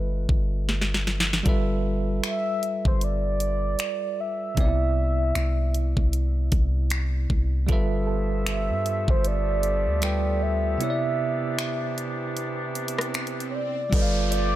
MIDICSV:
0, 0, Header, 1, 9, 480
1, 0, Start_track
1, 0, Tempo, 779221
1, 898, Time_signature, 4, 2, 24, 8
1, 8966, End_track
2, 0, Start_track
2, 0, Title_t, "Soft synth lead"
2, 0, Program_c, 0, 80
2, 0, Note_on_c, 0, 71, 93
2, 423, Note_off_c, 0, 71, 0
2, 1395, Note_on_c, 0, 76, 117
2, 1769, Note_on_c, 0, 72, 93
2, 1778, Note_off_c, 0, 76, 0
2, 1871, Note_on_c, 0, 74, 115
2, 1880, Note_off_c, 0, 72, 0
2, 2590, Note_on_c, 0, 76, 109
2, 2599, Note_off_c, 0, 74, 0
2, 4024, Note_off_c, 0, 76, 0
2, 5231, Note_on_c, 0, 76, 112
2, 5607, Note_on_c, 0, 72, 92
2, 5616, Note_off_c, 0, 76, 0
2, 5710, Note_on_c, 0, 74, 114
2, 5719, Note_off_c, 0, 72, 0
2, 6422, Note_on_c, 0, 76, 109
2, 6432, Note_off_c, 0, 74, 0
2, 7860, Note_off_c, 0, 76, 0
2, 8310, Note_on_c, 0, 73, 63
2, 8344, Note_on_c, 0, 74, 93
2, 8354, Note_off_c, 0, 73, 0
2, 8821, Note_off_c, 0, 74, 0
2, 8826, Note_on_c, 0, 74, 92
2, 8966, Note_off_c, 0, 74, 0
2, 8966, End_track
3, 0, Start_track
3, 0, Title_t, "Synth pluck"
3, 0, Program_c, 1, 84
3, 4970, Note_on_c, 1, 69, 66
3, 6508, Note_off_c, 1, 69, 0
3, 8813, Note_on_c, 1, 74, 76
3, 8966, Note_off_c, 1, 74, 0
3, 8966, End_track
4, 0, Start_track
4, 0, Title_t, "Tine electric piano"
4, 0, Program_c, 2, 4
4, 0, Control_c, 2, 64, 127
4, 0, Note_on_c, 2, 55, 62
4, 0, Note_on_c, 2, 65, 55
4, 0, Note_on_c, 2, 69, 57
4, 0, Note_on_c, 2, 71, 55
4, 0, Note_on_c, 2, 75, 55
4, 0, Note_on_c, 2, 76, 65
4, 865, Note_off_c, 2, 55, 0
4, 869, Note_off_c, 2, 65, 0
4, 874, Note_off_c, 2, 69, 0
4, 878, Note_off_c, 2, 71, 0
4, 882, Note_on_c, 2, 55, 75
4, 891, Note_on_c, 2, 65, 67
4, 900, Note_on_c, 2, 69, 68
4, 903, Note_off_c, 2, 76, 0
4, 907, Note_off_c, 2, 75, 0
4, 907, Control_c, 2, 64, 0
4, 909, Note_on_c, 2, 71, 67
4, 917, Note_on_c, 2, 76, 76
4, 1032, Control_c, 2, 64, 127
4, 2785, Note_off_c, 2, 55, 0
4, 2790, Note_off_c, 2, 65, 0
4, 2794, Note_off_c, 2, 69, 0
4, 2799, Note_off_c, 2, 71, 0
4, 2801, Note_on_c, 2, 48, 61
4, 2803, Note_off_c, 2, 76, 0
4, 2814, Note_on_c, 2, 59, 56
4, 2825, Control_c, 2, 64, 0
4, 2826, Note_on_c, 2, 63, 45
4, 2837, Note_on_c, 2, 74, 68
4, 2866, Note_on_c, 2, 64, 60
4, 2868, Note_off_c, 2, 63, 0
4, 2943, Control_c, 2, 64, 127
4, 4705, Note_off_c, 2, 48, 0
4, 4711, Note_off_c, 2, 59, 0
4, 4722, Note_on_c, 2, 55, 75
4, 4723, Note_off_c, 2, 74, 0
4, 4731, Note_on_c, 2, 65, 71
4, 4738, Note_off_c, 2, 64, 0
4, 4738, Note_on_c, 2, 69, 70
4, 4746, Control_c, 2, 64, 0
4, 4750, Note_on_c, 2, 71, 68
4, 4758, Note_on_c, 2, 76, 83
4, 4837, Control_c, 2, 64, 127
4, 6145, Note_off_c, 2, 55, 0
4, 6150, Note_off_c, 2, 65, 0
4, 6153, Note_off_c, 2, 69, 0
4, 6159, Note_off_c, 2, 71, 0
4, 6163, Note_off_c, 2, 76, 0
4, 6167, Note_on_c, 2, 55, 50
4, 6173, Note_on_c, 2, 65, 44
4, 6178, Note_on_c, 2, 69, 45
4, 6180, Note_on_c, 2, 71, 46
4, 6185, Note_on_c, 2, 79, 53
4, 6638, Note_on_c, 2, 48, 62
4, 6650, Note_on_c, 2, 59, 57
4, 6653, Note_off_c, 2, 55, 0
4, 6655, Note_off_c, 2, 65, 0
4, 6658, Note_off_c, 2, 69, 0
4, 6659, Note_off_c, 2, 71, 0
4, 6661, Note_on_c, 2, 64, 55
4, 6662, Note_off_c, 2, 79, 0
4, 6666, Control_c, 2, 64, 0
4, 6673, Note_on_c, 2, 73, 56
4, 6712, Note_off_c, 2, 73, 0
4, 6715, Note_on_c, 2, 74, 67
4, 6791, Control_c, 2, 64, 127
4, 8543, Note_off_c, 2, 48, 0
4, 8549, Note_off_c, 2, 59, 0
4, 8555, Note_off_c, 2, 64, 0
4, 8560, Note_on_c, 2, 55, 63
4, 8568, Note_on_c, 2, 65, 58
4, 8578, Note_on_c, 2, 69, 58
4, 8582, Note_off_c, 2, 74, 0
4, 8585, Control_c, 2, 64, 0
4, 8586, Note_on_c, 2, 71, 60
4, 8594, Note_on_c, 2, 75, 58
4, 8633, Note_off_c, 2, 75, 0
4, 8636, Note_on_c, 2, 77, 71
4, 8678, Control_c, 2, 64, 127
4, 8966, Note_off_c, 2, 55, 0
4, 8966, Note_off_c, 2, 65, 0
4, 8966, Note_off_c, 2, 69, 0
4, 8966, Note_off_c, 2, 71, 0
4, 8966, Note_off_c, 2, 77, 0
4, 8966, End_track
5, 0, Start_track
5, 0, Title_t, "Woodwind section"
5, 0, Program_c, 3, 71
5, 4736, Note_on_c, 3, 59, 70
5, 4736, Note_on_c, 3, 76, 72
5, 4737, Note_on_c, 3, 53, 75
5, 4738, Note_on_c, 3, 57, 68
5, 4739, Note_on_c, 3, 67, 86
5, 6638, Note_off_c, 3, 53, 0
5, 6638, Note_off_c, 3, 76, 0
5, 6639, Note_off_c, 3, 57, 0
5, 6655, Note_on_c, 3, 48, 77
5, 6655, Note_on_c, 3, 62, 70
5, 6656, Note_on_c, 3, 52, 73
5, 8474, Note_off_c, 3, 48, 0
5, 8474, Note_off_c, 3, 52, 0
5, 8474, Note_off_c, 3, 59, 0
5, 8474, Note_off_c, 3, 62, 0
5, 8474, Note_off_c, 3, 67, 0
5, 8579, Note_on_c, 3, 59, 72
5, 8579, Note_on_c, 3, 67, 89
5, 8580, Note_on_c, 3, 53, 79
5, 8581, Note_on_c, 3, 57, 76
5, 8581, Note_on_c, 3, 65, 71
5, 8966, Note_off_c, 3, 53, 0
5, 8966, Note_off_c, 3, 57, 0
5, 8966, Note_off_c, 3, 59, 0
5, 8966, Note_off_c, 3, 65, 0
5, 8966, Note_off_c, 3, 67, 0
5, 8966, End_track
6, 0, Start_track
6, 0, Title_t, "808-style bass"
6, 0, Program_c, 4, 38
6, 0, Note_on_c, 4, 31, 91
6, 165, Note_off_c, 4, 31, 0
6, 179, Note_on_c, 4, 31, 103
6, 874, Note_off_c, 4, 31, 0
6, 898, Note_on_c, 4, 31, 105
6, 1359, Note_off_c, 4, 31, 0
6, 1757, Note_on_c, 4, 31, 94
6, 2315, Note_off_c, 4, 31, 0
6, 2818, Note_on_c, 4, 36, 101
6, 3279, Note_off_c, 4, 36, 0
6, 3299, Note_on_c, 4, 36, 105
6, 3663, Note_off_c, 4, 36, 0
6, 3676, Note_on_c, 4, 36, 96
6, 4004, Note_off_c, 4, 36, 0
6, 4017, Note_on_c, 4, 36, 108
6, 4478, Note_off_c, 4, 36, 0
6, 4497, Note_on_c, 4, 36, 99
6, 4728, Note_off_c, 4, 36, 0
6, 4736, Note_on_c, 4, 31, 101
6, 5357, Note_on_c, 4, 43, 92
6, 5367, Note_off_c, 4, 31, 0
6, 5585, Note_off_c, 4, 43, 0
6, 5594, Note_on_c, 4, 31, 99
6, 6074, Note_on_c, 4, 38, 95
6, 6084, Note_off_c, 4, 31, 0
6, 6632, Note_off_c, 4, 38, 0
6, 8578, Note_on_c, 4, 31, 113
6, 8966, Note_off_c, 4, 31, 0
6, 8966, End_track
7, 0, Start_track
7, 0, Title_t, "Downlifter"
7, 0, Program_c, 5, 103
7, 8577, Note_on_c, 5, 60, 81
7, 8966, Note_off_c, 5, 60, 0
7, 8966, End_track
8, 0, Start_track
8, 0, Title_t, "Swell"
8, 0, Program_c, 6, 103
8, 6655, Note_on_c, 6, 60, 81
8, 8576, Note_off_c, 6, 60, 0
8, 8966, End_track
9, 0, Start_track
9, 0, Title_t, "Drums"
9, 179, Note_on_c, 9, 36, 89
9, 241, Note_off_c, 9, 36, 0
9, 423, Note_on_c, 9, 38, 53
9, 485, Note_off_c, 9, 38, 0
9, 502, Note_on_c, 9, 38, 55
9, 564, Note_off_c, 9, 38, 0
9, 582, Note_on_c, 9, 38, 68
9, 643, Note_off_c, 9, 38, 0
9, 660, Note_on_c, 9, 38, 65
9, 722, Note_off_c, 9, 38, 0
9, 740, Note_on_c, 9, 38, 88
9, 802, Note_off_c, 9, 38, 0
9, 821, Note_on_c, 9, 38, 81
9, 882, Note_off_c, 9, 38, 0
9, 897, Note_on_c, 9, 42, 62
9, 898, Note_on_c, 9, 36, 109
9, 959, Note_off_c, 9, 42, 0
9, 960, Note_off_c, 9, 36, 0
9, 1377, Note_on_c, 9, 26, 104
9, 1378, Note_on_c, 9, 42, 65
9, 1439, Note_off_c, 9, 26, 0
9, 1439, Note_off_c, 9, 42, 0
9, 1619, Note_on_c, 9, 42, 59
9, 1681, Note_off_c, 9, 42, 0
9, 1757, Note_on_c, 9, 36, 89
9, 1818, Note_off_c, 9, 36, 0
9, 1856, Note_on_c, 9, 42, 69
9, 1918, Note_off_c, 9, 42, 0
9, 2096, Note_on_c, 9, 42, 70
9, 2157, Note_off_c, 9, 42, 0
9, 2333, Note_on_c, 9, 42, 81
9, 2340, Note_on_c, 9, 26, 101
9, 2395, Note_off_c, 9, 42, 0
9, 2402, Note_off_c, 9, 26, 0
9, 2816, Note_on_c, 9, 42, 65
9, 2818, Note_on_c, 9, 36, 108
9, 2878, Note_off_c, 9, 42, 0
9, 2879, Note_off_c, 9, 36, 0
9, 3298, Note_on_c, 9, 26, 105
9, 3299, Note_on_c, 9, 42, 72
9, 3360, Note_off_c, 9, 26, 0
9, 3360, Note_off_c, 9, 42, 0
9, 3539, Note_on_c, 9, 42, 62
9, 3601, Note_off_c, 9, 42, 0
9, 3677, Note_on_c, 9, 36, 84
9, 3738, Note_off_c, 9, 36, 0
9, 3777, Note_on_c, 9, 42, 64
9, 3839, Note_off_c, 9, 42, 0
9, 4015, Note_on_c, 9, 42, 73
9, 4017, Note_on_c, 9, 36, 90
9, 4077, Note_off_c, 9, 42, 0
9, 4079, Note_off_c, 9, 36, 0
9, 4253, Note_on_c, 9, 42, 82
9, 4260, Note_on_c, 9, 26, 103
9, 4315, Note_off_c, 9, 42, 0
9, 4321, Note_off_c, 9, 26, 0
9, 4496, Note_on_c, 9, 36, 74
9, 4558, Note_off_c, 9, 36, 0
9, 4734, Note_on_c, 9, 42, 65
9, 4736, Note_on_c, 9, 36, 115
9, 4796, Note_off_c, 9, 42, 0
9, 4797, Note_off_c, 9, 36, 0
9, 5214, Note_on_c, 9, 26, 107
9, 5215, Note_on_c, 9, 42, 70
9, 5276, Note_off_c, 9, 26, 0
9, 5276, Note_off_c, 9, 42, 0
9, 5457, Note_on_c, 9, 42, 67
9, 5518, Note_off_c, 9, 42, 0
9, 5594, Note_on_c, 9, 36, 93
9, 5655, Note_off_c, 9, 36, 0
9, 5695, Note_on_c, 9, 42, 70
9, 5757, Note_off_c, 9, 42, 0
9, 5933, Note_on_c, 9, 42, 68
9, 5995, Note_off_c, 9, 42, 0
9, 6172, Note_on_c, 9, 42, 78
9, 6178, Note_on_c, 9, 26, 103
9, 6233, Note_off_c, 9, 42, 0
9, 6240, Note_off_c, 9, 26, 0
9, 6656, Note_on_c, 9, 42, 68
9, 6718, Note_off_c, 9, 42, 0
9, 7137, Note_on_c, 9, 26, 104
9, 7137, Note_on_c, 9, 42, 74
9, 7198, Note_off_c, 9, 26, 0
9, 7199, Note_off_c, 9, 42, 0
9, 7379, Note_on_c, 9, 42, 63
9, 7440, Note_off_c, 9, 42, 0
9, 7617, Note_on_c, 9, 42, 65
9, 7679, Note_off_c, 9, 42, 0
9, 7856, Note_on_c, 9, 42, 72
9, 7918, Note_off_c, 9, 42, 0
9, 7935, Note_on_c, 9, 42, 71
9, 7997, Note_off_c, 9, 42, 0
9, 7999, Note_on_c, 9, 37, 98
9, 8016, Note_on_c, 9, 42, 61
9, 8060, Note_off_c, 9, 37, 0
9, 8078, Note_off_c, 9, 42, 0
9, 8096, Note_on_c, 9, 42, 57
9, 8100, Note_on_c, 9, 26, 107
9, 8158, Note_off_c, 9, 42, 0
9, 8162, Note_off_c, 9, 26, 0
9, 8174, Note_on_c, 9, 42, 50
9, 8236, Note_off_c, 9, 42, 0
9, 8257, Note_on_c, 9, 42, 44
9, 8319, Note_off_c, 9, 42, 0
9, 8578, Note_on_c, 9, 36, 119
9, 8579, Note_on_c, 9, 42, 71
9, 8640, Note_off_c, 9, 36, 0
9, 8640, Note_off_c, 9, 42, 0
9, 8820, Note_on_c, 9, 42, 78
9, 8882, Note_off_c, 9, 42, 0
9, 8966, End_track
0, 0, End_of_file